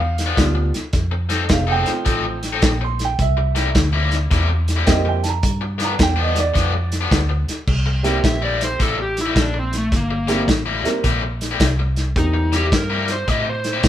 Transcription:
Already playing: fingered electric bass E2, upright piano F5
0.18 snare, closed hi-hat
0.26 overdriven electric guitar G2 F3 B3 D4
0.37 fingered electric bass D2, upright piano G3 B3 D4 F4, kick, snare, closed hi-hat
0.55 muted overdriven electric guitar stroke
0.74 muted fingered electric bass stroke, snare, closed hi-hat
0.93 fingered electric bass F2, kick, snare, closed hi-hat
1.11 muted overdriven electric guitar stroke
1.29 overdriven electric guitar F3 C4 D#4 A4, snare, closed hi-hat
1.49 fingered electric bass F1, upright piano G#3 B3 D4 E4, muted overdriven electric guitar stroke, kick, snare, closed hi-hat
1.53 upright piano F5
1.67 overdriven electric guitar F3 C4 D#4 A4, upright piano F#5
1.72 upright piano G5
1.86 upright piano A3 C4 D#4 F4, muted fingered electric bass stroke, snare, closed hi-hat
2.05 fingered electric bass A1, overdriven electric guitar F3 C4 D#4 A4, kick, closed hi-hat
2.25 muted overdriven electric guitar stroke
2.43 snare, closed hi-hat
2.53 overdriven electric guitar F3 C4 D#4 A4
2.62 fingered electric bass A#1, kick, snare, closed hi-hat
2.81 upright piano C6, muted overdriven electric guitar stroke
2.99 snare, closed hi-hat
3.05 upright piano G5
3.18 fingered electric bass C2, upright piano E5, kick, closed hi-hat
3.37 muted overdriven electric guitar stroke
3.55 overdriven electric guitar C3 G3 A#3 E4, snare, closed hi-hat
3.75 fingered electric bass D2, muted overdriven electric guitar stroke, kick, snare, closed hi-hat
3.93 overdriven electric guitar C3 G3 A#3 E4
4.11 snare, closed hi-hat
4.31 fingered electric bass E2, overdriven electric guitar C3 G3 A#3 E4, kick, snare, closed hi-hat
4.49 muted overdriven electric guitar stroke
4.68 snare, closed hi-hat
4.76 overdriven electric guitar C3 G3 A#3 E4
4.86 fingered electric bass F2, upright piano A#3 C4 E4 G4 D#5, kick, snare, closed hi-hat
5.05 upright piano G5, muted overdriven electric guitar stroke
5.23 upright piano A5, snare, closed hi-hat
5.29 upright piano A#5
5.43 fingered electric bass G2, kick, closed hi-hat
5.61 muted overdriven electric guitar stroke
5.78 overdriven electric guitar G2 F3 B3 D4, snare, closed hi-hat
5.84 upright piano A#5
5.99 fingered electric bass E2, upright piano G5, muted overdriven electric guitar stroke, kick, snare, closed hi-hat
6.16 overdriven electric guitar G2 F3 B3 D4
6.22 upright piano D#5
6.36 upright piano D5, snare, closed hi-hat
6.54 fingered electric bass F2, overdriven electric guitar G2 F3 B3 D4, kick, snare, closed hi-hat
6.73 muted overdriven electric guitar stroke
6.92 snare, closed hi-hat
7.01 overdriven electric guitar G2 F3 B3 D4
7.11 fingered electric bass D2, kick, snare, closed hi-hat
7.29 muted overdriven electric guitar stroke
7.48 muted fingered electric bass stroke, snare, closed hi-hat
7.67 fingered electric bass C2, kick, crash
7.86 muted overdriven electric guitar stroke
8.03 overdriven electric guitar C3 G3 A#3 E4, upright piano G3 A#3 C4 E4 G4, snare, closed hi-hat
8.24 fingered electric bass A#1, electric slide guitar E5, muted overdriven electric guitar stroke, kick, snare, closed hi-hat
8.42 overdriven electric guitar C3 G3 A#3 E4, electric slide guitar D5
8.61 electric slide guitar C5, snare, closed hi-hat
8.79 fingered electric bass A1, overdriven electric guitar C3 G3 A#3 E4, electric slide guitar A4, kick, snare, closed hi-hat
8.98 electric slide guitar G4, muted overdriven electric guitar stroke
9.17 snare, closed hi-hat
9.21 electric slide guitar E4
9.26 overdriven electric guitar C3 G3 A#3 E4
9.36 fingered electric bass A#1, kick, snare, closed hi-hat
9.40 electric slide guitar D4
9.54 muted overdriven electric guitar stroke
9.59 electric slide guitar C4
9.73 snare, closed hi-hat
9.78 electric slide guitar A3
9.92 fingered electric bass G1, kick, snare, closed hi-hat
9.96 electric slide guitar A#3
10.10 muted overdriven electric guitar stroke
10.27 overdriven electric guitar C3 G3 A#3 E4, upright piano G3 A#3 C4 E4 G4, snare, closed hi-hat
10.47 fingered electric bass A1, muted overdriven electric guitar stroke, kick, snare, closed hi-hat
10.66 overdriven electric guitar C3 G3 A#3 E4
10.84 upright piano G3 A#3 C4 E4 A#4, muted fingered electric bass stroke, snare, closed hi-hat
11.04 fingered electric bass A#1, overdriven electric guitar C3 G3 A#3 E4, kick, closed hi-hat
11.23 muted overdriven electric guitar stroke
11.41 snare, closed hi-hat
11.51 overdriven electric guitar C3 G3 A#3 E4
11.60 fingered electric bass C2, kick, snare, closed hi-hat
11.79 muted overdriven electric guitar stroke
11.96 snare, closed hi-hat
12.16 fingered electric bass E2, upright piano E3 G3 A#3 C4 G4, electric slide guitar D#4, kick, closed hi-hat
12.34 muted overdriven electric guitar stroke
12.52 overdriven electric guitar C3 G3 A#3 E4, electric slide guitar G4, snare, closed hi-hat
12.72 fingered electric bass G2, electric slide guitar A#4, muted overdriven electric guitar stroke, kick, snare, closed hi-hat
12.90 overdriven electric guitar C3 G3 A#3 E4
13.08 snare, closed hi-hat
13.12 electric slide guitar C5
13.28 fingered electric bass A2, overdriven electric guitar C3 G3 A#3 E4, electric slide guitar D#5, kick, closed hi-hat
13.45 muted overdriven electric guitar stroke
13.49 electric slide guitar C5
13.64 snare, closed hi-hat
13.73 overdriven electric guitar C3 G3 A#3 E4
13.83 fingered electric bass A#2, kick, snare, closed hi-hat

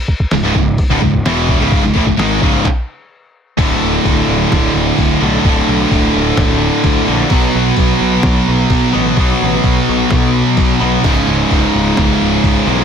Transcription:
0.08 kick
0.20 kick
0.31 picked electric bass C#1, distorted electric guitar C#2 G#2, snare, crash
0.43 picked electric bass C#1, distorted electric guitar C#2 G#2
0.55 picked electric bass C#1, distorted electric guitar C#2 G#2, kick
0.78 kick, crash
0.90 picked electric bass D1, distorted electric guitar D2 A2
1.02 picked electric bass C#1, distorted electric guitar C#2 G#2, kick
1.14 kick
1.25 picked electric bass E1, distorted electric guitar E2 B2 E3, snare, crash
1.49 kick
1.59 picked electric bass C#1, distorted electric guitar C#2 G#2 C#3
1.72 kick, crash
1.84 picked electric bass C#1, distorted electric guitar C#2 G#2
1.95 picked electric bass A1, distorted electric guitar A2 E3, kick
2.07 picked electric bass C#1, distorted electric guitar C#2 G#2, kick
2.18 picked electric bass G#1, distorted electric guitar G#2 D#3 G#3, snare, crash
2.42 picked electric bass C#1, distorted electric guitar C#2 G#2 C#3, kick
2.65 kick, clap
3.57 picked electric bass D1, distorted electric guitar D2 A2 D3, kick, crash
3.82 picked electric bass D1
4.05 picked electric bass D1, kick, crash
4.28 picked electric bass D1
4.52 picked electric bass D1, kick, snare, crash
4.75 picked electric bass D1
4.98 picked electric bass D1, kick, crash
5.21 picked electric bass B1, distorted electric guitar D2 A2 D3
5.44 picked electric bass D1, distorted electric guitar D2 A2 D3, kick, crash
5.69 picked electric bass B1
5.91 picked electric bass D1, kick, crash
6.15 picked electric bass D1
6.37 picked electric bass D1, kick, snare, crash
6.84 picked electric bass D2, kick, crash
7.07 picked electric bass A#1, distorted electric guitar D2 A2 D3
7.30 picked electric bass B1, distorted electric guitar B2 F#3 B3, kick, crash
7.55 picked electric bass B1
7.76 picked electric bass B1, kick, crash
8.01 picked electric bass B1
8.23 picked electric bass B1, kick, snare, crash
8.48 picked electric bass B1
8.70 picked electric bass B1, kick, crash
8.93 picked electric bass A1, distorted electric guitar B2 F#3 B3
9.17 picked electric bass B1, distorted electric guitar B2 F#3 B3, kick, crash
9.42 picked electric bass A1
9.64 picked electric bass B1, kick, crash
9.89 picked electric bass B1
10.10 picked electric bass B1, kick, snare, crash
10.57 picked electric bass B1, kick, crash
10.80 picked electric bass B1, distorted electric guitar B2 F#3 B3
11.04 picked electric bass C#1, distorted electric guitar C#2 G#2 C#3, kick, crash
11.28 picked electric bass C#1
11.51 picked electric bass C#1, kick, crash
11.75 picked electric bass C#1
11.97 picked electric bass C#1, kick, snare, crash
12.22 picked electric bass C#1
12.43 picked electric bass C#1, kick, crash
12.67 picked electric bass B1, distorted electric guitar C#2 G#2 C#3

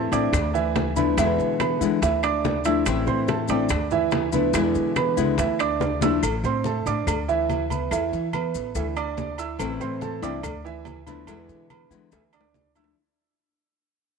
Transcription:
Already playing: nylon-string guitar E3 A3 C4 E4
0.12 upright bass A2, nylon-string guitar A3 C4 E4, grand piano D4 D5 D6, high conga, high timbale, maracas
0.33 upright bass D2, muted nylon-string guitar stroke, high bongo, high conga, low conga, high timbale, claves, maracas
0.54 grand piano E3 E4 E5, high conga, maracas
0.76 high bongo, low bongo, high conga, high timbale, low timbale, maracas
0.96 nylon-string guitar F3 A3 D4 E4, grand piano B3 B4 B5, high conga, maracas
1.17 upright bass E2, nylon-string guitar B2 D3 G#3 B3 E4, grand piano E3 E4 E5, high bongo, high timbale, claves, maracas
1.38 upright bass E3, high bongo, high conga, maracas
1.60 grand piano B3 B4 B5, high bongo, high conga, high timbale, claves, maracas
1.81 nylon-string guitar D3 G#3 B3 E4, upright bass E3, high conga, maracas
2.02 upright bass D2, grand piano E3 E4 E5, muted nylon-string guitar stroke, high bongo, high conga, high timbale, maracas
2.23 grand piano D4 D5 D6, high bongo, high conga, high timbale, claves, maracas
2.44 high bongo, low bongo, high conga, low timbale, maracas
2.65 nylon-string guitar F3 A3 D4 E4, grand piano E4 E5 E6, high timbale, maracas
2.86 upright bass A1, nylon-string guitar E3 A3 C4 E4, high bongo, high timbale, claves, maracas
3.07 upright bass A2, grand piano C4 C5 C6, high conga, maracas
3.28 grand piano A3 A4 A5, high bongo, high conga, high timbale, maracas
3.48 upright bass A1, nylon-string guitar A3 C4 E4, grand piano D4 D5 D6, high conga, high timbale, maracas
3.69 upright bass D2, muted nylon-string guitar stroke, high bongo, high conga, low conga, high timbale, claves, maracas
3.91 grand piano E3 E4 E5, high conga, low conga, maracas
4.11 high bongo, low bongo, high conga, high timbale, low timbale, maracas
4.32 nylon-string guitar F3 A3 D4 E4, grand piano B3 B4 B5, high conga, maracas
4.53 upright bass E2, nylon-string guitar B2 D3 G#3 B3 E4, grand piano E3 E4 E5, high bongo, high conga, high timbale, claves, maracas
4.75 upright bass E3, high bongo, high conga, maracas
4.96 grand piano B3 B4 B5, high bongo, high conga, high timbale, claves, maracas
5.17 upright bass C#2, nylon-string guitar D3 G#3 B3 E4, high conga, maracas
5.38 upright bass D2, grand piano E3 E4 E5, muted nylon-string guitar stroke, high bongo, high conga, high timbale, maracas
5.59 grand piano D4 D5 D6, high bongo, high conga, high timbale, claves, maracas
5.80 high bongo, high conga, high timbale, maracas
6.01 nylon-string guitar F3 A3 D4 E4, grand piano E4 E5 E6, low bongo, high conga, low timbale, maracas
6.23 upright bass A1, cowbell, low agogo, claves, maracas
6.43 upright bass A2, grand piano C4 C5 C6, low agogo, maracas
6.64 grand piano A3 A4 A5, cowbell, high conga, maracas
6.86 upright bass A2, grand piano D4 D5 D6, high conga, low agogo, maracas
7.07 upright bass D2, cowbell, high conga, low conga, low agogo, claves, maracas
7.28 grand piano E3 E4 E5, high conga, maracas
7.49 cowbell, high conga, low timbale, low agogo, maracas
7.70 grand piano B3 B4 B5, cowbell, high conga, low agogo, maracas
7.91 upright bass E2, grand piano E3 E4 E5, cowbell, low agogo, claves, maracas
8.12 upright bass E3, cowbell, high conga, maracas
8.33 grand piano B3 B4 B5, cowbell, high conga, low agogo, claves, maracas
8.54 upright bass A1, cowbell, high conga, maracas
8.75 upright bass D2, grand piano E3 E4 E5, cowbell, low agogo, maracas
8.96 grand piano D4 D5 D6, high conga, low agogo, claves, maracas
9.17 cowbell, high conga, low timbale, maracas
9.38 grand piano E4 E5 E6, cowbell, high conga, low agogo, maracas
9.59 upright bass A1, nylon-string guitar E3 A3 C4 E4, cowbell, high conga, low agogo, claves, maracas
9.80 upright bass A2, grand piano C4 C5 C6, high conga, low agogo, maracas
10.01 grand piano A3 A4 A5, cowbell, high conga, maracas
10.22 upright bass C2, nylon-string guitar A3 C4 E4, grand piano D4 D5 D6, high conga, low agogo, maracas
10.43 upright bass D2, muted nylon-string guitar stroke, cowbell, high conga, low conga, low agogo, claves, maracas
10.64 grand piano E3 E4 E5, high conga, maracas
10.85 cowbell, high conga, low timbale, low agogo, maracas
11.07 nylon-string guitar F3 A3 D4 E4, grand piano B3 B4 B5, cowbell, high conga, low agogo, maracas
11.27 upright bass E2, nylon-string guitar B2 D3 G#3 B3 E4, grand piano E3 E4 E5, cowbell, low agogo, claves, maracas
11.49 upright bass E3, cowbell, high conga, maracas
11.70 grand piano B3 B4 B5, cowbell, high conga, low agogo, claves, maracas
11.90 nylon-string guitar D3 G#3 B3 E4, upright bass E3, cowbell, high conga, maracas
12.12 upright bass D2, grand piano E3 E4 E5, muted nylon-string guitar stroke, cowbell, high bongo, high conga, low agogo, maracas
12.33 grand piano D4 D5 D6, high conga, low agogo, claves, maracas
12.41 low bongo
12.54 cowbell, low bongo, high conga, low timbale, maracas
12.75 nylon-string guitar F3 A3 D4 E4, grand piano E4 E5 E6, cowbell, high conga, low agogo, maracas
12.84 low bongo

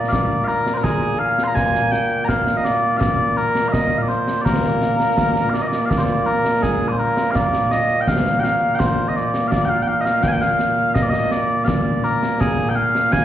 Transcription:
Already playing: bagpipes A#2 A#3
0.08 bagpipes D5 F5
0.12 concert bass drum, snare
0.44 bagpipes A#4 F5
0.48 snare
0.66 snare
0.74 bagpipes A#4 C5
0.84 bagpipes G#4, concert bass drum, snare
1.19 bagpipes F5
1.38 snare
1.44 bagpipes A#5 C6
1.55 bagpipes G#5, concert bass drum, snare
1.75 snare
1.91 bagpipes G5, snare
2.25 bagpipes F5 A#5
2.29 concert bass drum, snare
2.47 snare
2.57 bagpipes D#5
2.64 bagpipes D5, snare
2.97 bagpipes D5 F5
3.01 concert bass drum, snare
3.37 bagpipes A#4, snare
3.55 snare
3.69 bagpipes D#5 F5
3.73 concert bass drum, snare
3.98 bagpipes D5 F5
4.08 bagpipes C5, snare
4.28 snare
4.42 bagpipes A#4 D5
4.46 concert bass drum, snare
4.64 snare
4.82 snare
5.00 snare
5.18 concert bass drum, snare
5.36 snare
5.50 bagpipes D5 F5
5.54 snare
5.61 bagpipes D#5
5.67 bagpipes D5
5.72 snare
5.85 bagpipes F5
5.90 bagpipes D5, concert bass drum, snare
5.98 bagpipes C5
6.04 bagpipes D5
6.26 bagpipes A#4, snare
6.45 snare
6.62 bagpipes G#4, concert bass drum, snare
6.88 bagpipes C5 D5
6.99 bagpipes A#4
7.17 snare
7.31 bagpipes F5
7.35 bagpipes D5, concert bass drum, snare
7.54 snare
7.71 bagpipes D#5, snare
8.01 bagpipes G5
8.07 bagpipes F5, concert bass drum, snare
8.25 snare
8.40 bagpipes F5 G5
8.44 snare
8.75 bagpipes G5
8.79 bagpipes C5, concert bass drum, snare
9.08 bagpipes D#5
9.16 bagpipes D5, snare
9.34 snare
9.47 bagpipes D5 F5
9.52 concert bass drum, snare
9.65 bagpipes G5
9.69 bagpipes F5
9.82 bagpipes G5
9.88 bagpipes F5
10.01 bagpipes D#5
10.05 bagpipes F5, snare
10.23 bagpipes G5, concert bass drum, snare
10.28 bagpipes G5 G#5
10.41 bagpipes F5, snare
10.59 snare
10.95 bagpipes D#5, concert bass drum, snare
11.02 bagpipes D5
11.09 bagpipes D#5
11.13 snare
11.31 bagpipes D5, snare
11.64 bagpipes D5 F5, concert bass drum, snare
12.04 bagpipes A#4, snare
12.23 snare
12.40 bagpipes G#4, concert bass drum, snare
12.69 bagpipes G5
12.76 bagpipes F5
12.95 snare
13.12 bagpipes G#5, concert bass drum, snare

